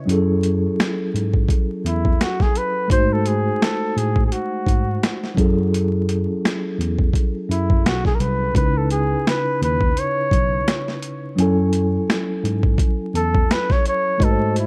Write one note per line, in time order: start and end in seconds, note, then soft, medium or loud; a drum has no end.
0.06 0.66 F#2 medium
0.06 2.85 F#3 medium
0.06 2.86 C#4 medium
0.06 2.87 E4 medium
0.06 closed hi-hat medium
0.11 2.88 G#4 medium
0.11 2.88 A4 medium
0.43 closed hi-hat medium
0.80 finger snap medium
0.80 snare loud
0.80 closed hi-hat medium
1.14 1.43 G#2 medium
1.14 closed hi-hat soft
1.34 kick medium
1.48 kick medium
1.48 closed hi-hat medium
1.85 2.14 E2 medium
1.85 2.23 E4 medium
1.85 closed hi-hat medium
2.05 kick medium
2.21 2.44 F#4 medium
2.21 finger snap medium
2.21 snare medium
2.21 closed hi-hat medium
2.40 2.59 G#4 medium
2.40 kick medium
2.40 snare soft
2.55 2.91 B4 medium
2.55 closed hi-hat medium
2.88 3.48 G#2 loud
2.88 5.32 G#3 medium
2.88 5.33 D#4 medium
2.88 5.34 F#4 medium
2.88 3.14 C5 loud
2.88 kick loud
2.88 closed hi-hat medium
2.93 5.35 A3 medium
2.93 5.36 C5 medium
3.13 3.29 A4 medium
3.26 3.64 G#4 loud
3.26 closed hi-hat medium
3.62 3.99 A4 medium
3.62 finger snap medium
3.62 snare loud
3.62 closed hi-hat medium
3.96 4.25 A2 medium
3.96 4.25 G#4 medium
3.96 closed hi-hat medium
4.16 kick medium
4.26 4.34 G#4 medium
4.32 5.38 F#4 medium
4.32 closed hi-hat medium
4.67 4.96 G#2 medium
4.67 kick medium
4.67 closed hi-hat medium
5.03 finger snap medium
5.03 snare loud
5.03 closed hi-hat medium
5.24 snare soft
5.34 6.25 F#2 loud
5.34 8.14 F#3 medium
5.34 8.15 C#4 medium
5.34 8.16 E4 medium
5.34 kick loud
5.34 closed hi-hat medium
5.39 8.17 G#4 medium
5.39 8.18 A4 medium
5.74 closed hi-hat medium
6.09 closed hi-hat medium
6.45 finger snap medium
6.45 snare loud
6.45 closed hi-hat medium
6.78 7.08 E2 medium
6.78 closed hi-hat medium
6.99 kick medium
7.13 kick medium
7.13 closed hi-hat medium
7.50 7.78 F#2 medium
7.50 7.87 E4 medium
7.50 closed hi-hat medium
7.70 kick medium
7.85 8.14 B1 medium
7.85 8.06 F#4 medium
7.85 finger snap medium
7.85 snare loud
7.85 closed hi-hat medium
8.05 8.16 G#4 medium
8.05 kick medium
8.05 snare soft
8.15 8.22 A#4 medium
8.20 8.49 C2 medium
8.20 8.55 B4 medium
8.20 closed hi-hat medium
8.53 9.13 C#2 medium
8.53 11.32 C#3 medium
8.53 11.33 C#4 medium
8.53 11.34 D#4 medium
8.53 8.79 B4 loud
8.53 kick loud
8.53 closed hi-hat medium
8.58 11.35 E4 medium
8.58 8.65 A#4 medium
8.66 11.39 B4 medium
8.77 8.91 A4 medium
8.90 9.29 G#4 loud
8.90 closed hi-hat medium
9.27 9.62 B4 medium
9.27 finger snap medium
9.27 snare loud
9.27 closed hi-hat medium
9.62 9.90 D#2 medium
9.62 10.01 B4 medium
9.62 closed hi-hat medium
9.81 kick medium
9.97 11.04 C#5 medium
9.97 closed hi-hat medium
10.31 10.61 B1 medium
10.31 kick medium
10.31 closed hi-hat medium
10.68 finger snap medium
10.68 snare medium
10.68 closed hi-hat medium
10.88 snare soft
11.02 closed hi-hat medium
11.36 11.96 F#2 loud
11.36 14.15 F#3 medium
11.36 14.15 C#4 medium
11.36 14.16 E4 medium
11.36 closed hi-hat medium
11.40 14.18 A4 medium
11.40 14.17 G#5 medium
11.73 closed hi-hat medium
12.10 finger snap medium
12.10 snare loud
12.10 closed hi-hat medium
12.44 12.73 G#2 medium
12.44 closed hi-hat soft
12.63 kick medium
12.78 kick medium
12.78 closed hi-hat medium
13.14 13.43 E2 medium
13.14 13.53 A4 loud
13.14 closed hi-hat medium
13.35 kick medium
13.51 13.73 B4 loud
13.51 finger snap medium
13.51 snare loud
13.51 closed hi-hat medium
13.70 13.86 C#5 medium
13.70 kick medium
13.70 snare soft
13.86 14.25 C#5 loud
13.86 closed hi-hat medium
14.18 14.67 G#2 loud
14.18 14.67 G#3 medium
14.18 14.67 F#4 medium
14.18 14.67 D#5 medium
14.18 kick loud
14.18 closed hi-hat medium
14.23 14.67 A3 medium
14.23 14.57 A4 loud
14.23 14.29 B4 medium
14.31 14.67 C5 medium
14.56 14.67 E4 medium
14.56 closed hi-hat medium